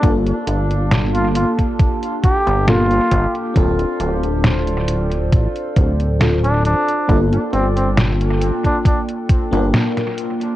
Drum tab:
HH |xxxxxxxxxxxxxxxx|xxxxxxxxxxxxxxxx|xxxxxxxxxxxxxxxx|
SD |----o-------o---|----o-------o---|----o-------oo--|
BD |o------oo-o---o-|o-------o-o-----|o------oo-o-----|